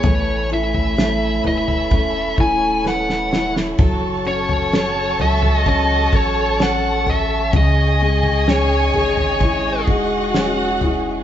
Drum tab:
SD |----o-------oooo|----o-------o---|----o-------o---|
FT |o--o--ooo-------|o--o--ooo-----o-|o--o--ooo-----o-|
BD |--------o-o-----|o-------o-o-----|--------o-o-----|